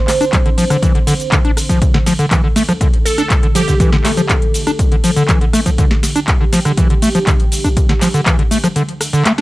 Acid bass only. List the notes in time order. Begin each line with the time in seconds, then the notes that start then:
0.21 D4
0.33 F3
0.46 D3
0.58 F3
0.70 D3
0.82 E3
0.95 D3
1.07 D3
1.32 D3
1.45 D4
1.69 F3
1.94 D3
2.06 F3
2.19 D3
2.31 E3
2.44 D3
2.56 A3
2.69 F3
2.81 D3
3.18 D4
3.43 D3
3.55 F3
3.68 D3
3.80 E3
3.93 D3
4.05 A3
4.17 F3
4.30 D3
4.67 D4
4.92 D3
5.04 F3
5.16 D3
5.29 E3
5.41 D3
5.53 A3
5.66 F3
5.78 D3
6.16 D4
6.41 D3
6.53 F3
6.65 D3
6.78 E3
6.90 D3
7.02 A3
7.15 F3
7.27 D3
7.64 D4
7.89 D3
8.02 F3
8.14 D3
8.26 E3
8.39 D3
8.51 A3
8.64 F3
8.76 D3
9.13 D3
9.25 A3
9.38 D4